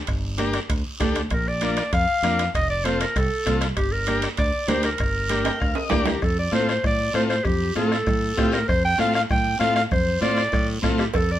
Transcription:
0.07 fingered electric bass G1, bombo low, bombo rim, high conga, high timbale, long guiro
0.38 transistor combo organ D4 G4 A#4, bombo rim, high conga, high timbale, short guiro
0.54 bombo rim, high timbale, short guiro
0.69 fingered electric bass D2, bombo low, bombo rim, high conga, high timbale, long guiro
1.00 fingered electric bass D2, transistor combo organ D4 G4 A4, bombo low, bombo rim, high conga, high timbale, low timbale, short guiro
1.15 bombo rim, high timbale, short guiro
1.30 fingered electric bass A#1, clarinet A#4, bombo low, bombo rim, high timbale, long guiro
1.48 clarinet D5
1.61 transistor combo organ D4 F4 A#4, bombo rim, high conga, high timbale, short guiro
1.77 bombo rim, high timbale, short guiro
1.93 fingered electric bass F2, clarinet F5, bombo low, bombo rim, high conga, high timbale, long guiro
2.23 fingered electric bass F2, transistor combo organ D4 F4 A#4, bombo rim, high conga, high timbale, short guiro
2.39 bombo rim, high timbale, short guiro
2.54 fingered electric bass F1, clarinet D#5, bombo low, bombo rim, high conga, high timbale, long guiro
2.70 clarinet D5
2.85 transistor combo organ C4 F4 A4, clarinet C5, bombo rim, high conga, high timbale, short guiro
3.00 clarinet A#4, bombo rim, high timbale, short guiro
3.16 fingered electric bass C2, clarinet A4, bombo low, bombo rim, high conga, high timbale, long guiro
3.46 fingered electric bass C2, transistor combo organ C4 F4 A4, bombo low, bombo rim, high conga, high timbale, short guiro
3.61 bombo rim, high timbale, short guiro
3.77 fingered electric bass G1, clarinet G4, bombo low, bombo rim, high conga, high timbale, long guiro
3.92 clarinet A#4
4.07 transistor combo organ D4 G4 A#4, bombo rim, high conga, high timbale, short guiro
4.22 bombo rim, high timbale, short guiro
4.37 fingered electric bass D2, clarinet D5, bombo low, bombo rim, high conga, high timbale, long guiro
4.68 fingered electric bass D2, transistor combo organ D4 G4 A#4, clarinet C5, bombo rim, high conga, high timbale, low timbale, short guiro
4.83 clarinet A#4, bombo rim, high timbale, short guiro
4.98 fingered electric bass G1, bombo low, bombo rim, high conga, high timbale, long guiro
5.29 transistor combo organ D4 G4 A#4, bombo rim, high conga, high timbale, short guiro
5.44 transistor combo organ G5, bombo rim, high timbale, short guiro
5.60 fingered electric bass D2, transistor combo organ F5, bombo low, bombo rim, high conga, long guiro
5.75 transistor combo organ D#5, high timbale
5.89 fingered electric bass D2, transistor combo organ D4 G4 A#4 D5, bombo low, bombo rim, high conga, low timbale, short guiro
6.05 transistor combo organ A#4, bombo rim, low timbale, short guiro
6.10 clarinet G4
6.22 fingered electric bass F2, clarinet A4, bombo low, bombo rim, high conga, long guiro
6.39 clarinet D5
6.52 fingered electric bass A2, transistor combo organ C4 F4 A4, clarinet C5, bombo rim, high conga, short guiro
6.69 clarinet C5, bombo rim, short guiro
6.83 fingered electric bass A2, clarinet D5, bombo low, bombo rim, high conga, low conga, long guiro
7.14 fingered electric bass A2, transistor combo organ C4 F4 A4, clarinet C5, bombo rim, high conga, short guiro
7.30 clarinet C5, bombo rim, short guiro
7.44 fingered electric bass F2, clarinet G4, bombo low, bombo rim, high conga, low conga, long guiro
7.75 fingered electric bass A2, transistor combo organ C4 F4 A4, clarinet A4, bombo rim, high conga, short guiro
7.92 bombo rim, short guiro
8.07 fingered electric bass A2, bombo low, bombo rim, high conga, low conga, long guiro
8.37 fingered electric bass A2, transistor combo organ C4 F4 G4, bombo low, bombo rim, high conga, short guiro
8.52 clarinet A#4, bombo rim, short guiro
8.68 fingered electric bass F2, clarinet C5, bombo low, bombo rim, long guiro
8.85 clarinet G5
8.98 fingered electric bass A2, transistor combo organ C4 F4 A4, clarinet F5, bombo rim, high conga, short guiro
9.14 clarinet F5, bombo rim, short guiro
9.30 fingered electric bass A2, clarinet G5, bombo low, bombo rim, high conga, low conga, long guiro
9.59 fingered electric bass A2, transistor combo organ C4 F4 A4, clarinet F5, bombo rim, high conga, short guiro
9.76 clarinet F5, bombo rim, short guiro
9.91 fingered electric bass F2, clarinet C5, bombo low, bombo rim, high conga, low conga, long guiro
10.21 fingered electric bass A2, transistor combo organ C4 F4 C5, clarinet D5, bombo rim, high conga, short guiro
10.37 bombo rim, short guiro
10.52 fingered electric bass A2, bombo low, bombo rim, high conga, low conga, long guiro
10.82 fingered electric bass A2, transistor combo organ C4 F4 A4, bombo low, bombo rim, high conga, low conga, short guiro
10.98 clarinet G4, bombo rim, short guiro
11.14 fingered electric bass F2, clarinet A4, bombo low, bombo rim, cowbell, high conga, long guiro
11.32 clarinet D5

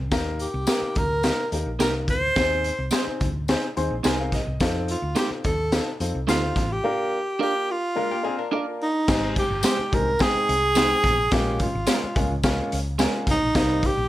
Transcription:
Already playing: fingered electric bass C2
0.11 fingered electric bass D#2, upright piano A#3 D#4 G4 A#4, kick, snare, closed hi-hat, tambourine
0.39 tenor saxophone G4, closed hi-hat
0.54 fingered electric bass C2
0.67 clean electric guitar A#3 D#4 G4 A#4, upright piano A#3 D#4 G4 A#4, snare, closed hi-hat, tambourine
0.82 muted fingered electric bass stroke
0.95 fingered electric bass D2, tenor saxophone A#4, kick, closed hi-hat
1.23 upright piano A#3 D#4 G4 A#4, snare, closed hi-hat, tambourine
1.52 fingered electric bass D#2, upright piano A#3 D#4 G4 A#4, closed hi-hat
1.66 fingered electric bass A#1
1.79 fingered electric bass C2, clean electric guitar A#3 D#4 G4 A#4, upright piano A#3 D#4 G4 A#4, tenor saxophone A#4, snare, closed hi-hat, tambourine
2.08 fingered electric bass D2, tenor saxophone C5, kick, closed hi-hat
2.36 fingered electric bass D#2, upright piano C4 D#4 G#4 C5, kick, snare, closed hi-hat, tambourine
2.64 closed hi-hat
2.79 fingered electric bass C2
2.91 clean electric guitar C4 D#4 G#4 C5, upright piano C4 D#4 G#4 C5, snare, closed hi-hat, tambourine
3.07 muted fingered electric bass stroke
3.21 fingered electric bass D2, kick, closed hi-hat
3.48 upright piano C4 D#4 G#4 C5, snare, closed hi-hat, tambourine
3.77 fingered electric bass D#2, upright piano C4 D#4 G#4 C5 C6, closed hi-hat
3.91 fingered electric bass A#1
4.03 fingered electric bass C2, clean electric guitar C4 D#4 G#4 C5, upright piano C4 D#4 G#4 A#4 G#5, snare, closed hi-hat, tambourine
4.19 upright piano F5
4.32 upright piano D#5, kick, snare, closed hi-hat
4.47 fingered electric bass C2
4.60 fingered electric bass F2, upright piano C4 D#4 F4 A4, kick, snare, closed hi-hat, tambourine
4.88 tenor saxophone F4, closed hi-hat
5.02 fingered electric bass D2
5.15 clean electric guitar A3 D#4 F4 C5, upright piano C4 D#4 F4 A4, tenor saxophone G4, snare, closed hi-hat, tambourine
5.30 muted fingered electric bass stroke
5.44 fingered electric bass D#2, tenor saxophone A4, kick, closed hi-hat
5.72 upright piano C4 D#4 F4 A4, snare, closed hi-hat, tambourine
6.00 fingered electric bass F2, upright piano C4 D#4 F4 A4, closed hi-hat
6.15 fingered electric bass C2
6.27 fingered electric bass D2, clean electric guitar A3 D#4 F4 C5, upright piano C4 D#4 F4 A4, tenor saxophone F4, snare, closed hi-hat, tambourine
6.56 fingered electric bass A1, kick, snare, closed hi-hat
6.72 tenor saxophone G4
6.84 upright piano A#3 D4 F4 A#4
7.39 upright piano A#3 D4 F4 A#4, clean electric guitar D4 F4 A#4 D5, tenor saxophone G4
7.71 tenor saxophone F4
7.95 hollow-body jazz guitar G#3 F4, upright piano A#3 D4 F4 A#4
8.11 hollow-body jazz guitar A#3 G4
8.23 upright piano A#3 D4 F4 A#4, hollow-body jazz guitar C4 G#4
8.38 hollow-body jazz guitar D4 A#4
8.51 upright piano A#3 D4 F4 A#4, clean electric guitar D4 F4 A#4 D5
8.82 tenor saxophone D#4
9.08 fingered electric bass G#1, upright piano G#3 C4 D#4 G4, kick, snare, crash, tambourine
9.36 tenor saxophone G4, kick, closed hi-hat
9.50 fingered electric bass G1
9.63 clean electric guitar G#3 D#4 G4 C5, upright piano G#3 C4 D#4 G4, tenor saxophone G4, snare, closed hi-hat, tambourine
9.79 muted fingered electric bass stroke
9.92 fingered electric bass C2, upright piano G#3 C4 D#4 G4, tenor saxophone A#4, kick, closed hi-hat
10.19 upright piano G#3 C4 D#4 G5, tenor saxophone G#4, kick, snare, closed hi-hat, tambourine
10.35 muted fingered electric bass stroke
10.49 fingered electric bass C2, closed hi-hat
10.75 clean electric guitar G#3 D#4 G4 C5, upright piano G#3 C4 D#4 G5, snare, closed hi-hat, tambourine
11.04 fingered electric bass A#1, kick, snare, closed hi-hat
11.31 fingered electric bass A#1, upright piano G#3 A#3 C#4 F4, tenor saxophone G4, kick, snare, closed hi-hat, tambourine
11.59 tenor saxophone F4, kick, closed hi-hat
11.75 fingered electric bass G#1
11.87 clean electric guitar G#3 C#4 F4 A#4, upright piano G#3 A#3 C#4 F4, snare, closed hi-hat, tambourine
12.03 muted fingered electric bass stroke
12.16 fingered electric bass C#2, upright piano G#3 A#3 C#4 F4, kick, closed hi-hat
12.43 upright piano G#3 A#3 C#4 F4, kick, snare, closed hi-hat, tambourine
12.72 fingered electric bass C#2, closed hi-hat
12.99 clean electric guitar G#3 C#4 F4 A#4, upright piano G#3 A#3 C#4 F4, snare, closed hi-hat, tambourine
13.27 fingered electric bass C2, tenor saxophone D#4, kick, snare, closed hi-hat
13.42 fingered electric bass A#1
13.55 fingered electric bass C2, upright piano G3 A#3 C4 D#4, kick, snare, closed hi-hat, tambourine
13.83 tenor saxophone G4, kick, closed hi-hat
13.97 fingered electric bass A#1

